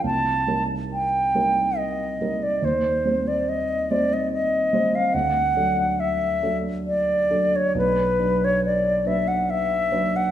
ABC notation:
X:1
M:3/4
L:1/16
Q:1/4=70
K:Cdor
V:1 name="Flute"
a3 z g4 e3 d | c3 d e2 d e e3 f | [K:Dlyd] f4 e4 d3 c | B3 c d2 e f e3 f |]
V:2 name="Grand piano"
C,,2 [G,EB]4 [G,EB]4 [G,EB]2 | E,,2 [G,Cc]4 [G,Cc]4 [G,Cc]2 | [K:Dlyd] D,,2 [F,DA]4 [F,DA]4 [F,DA]2 | B,,,2 [F,DB]4 [F,DB]4 [F,DB]2 |]